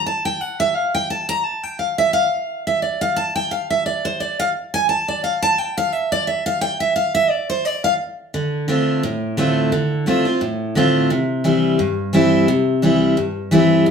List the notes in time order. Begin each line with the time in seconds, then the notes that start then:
0.06 A5
0.25 G5
0.41 F#5
0.60 E5
0.75 F5
0.95 G5
1.10 A5
1.29 A#5
1.44 A5
1.63 G5
1.79 F5
1.98 E5
2.13 F5
2.67 E5
2.82 D5
3.01 F5
3.16 A5
3.36 G5
3.51 F5
3.70 E5
3.86 D5
4.05 C5
4.20 D5
4.40 F5
4.74 G#5
4.89 A5
5.08 D5
5.24 F5
5.42 A5
5.58 G5
5.78 F5
5.92 E5
6.12 D5
6.27 E5
6.46 F5
6.61 G5
6.80 E5
6.96 F5
7.15 E5
7.30 D5
7.50 C5
7.65 D5
7.84 F5
8.34 D3
8.68 D3 A3 C4 F4
9.03 A2
9.37 D3 A3 C4 F4
9.72 D3
10.06 D3 A3 C4 F4
10.25 C4 F4
10.41 A2
10.75 D3 A3 C4 F4
11.10 C3
11.44 E3 G3 C4 E4
11.79 G2
12.13 E3 G3 C4 E4
12.48 C3
12.82 E3 G3 C4 E4
13.17 G2
13.51 E3 G3 C4 E4
13.86 F2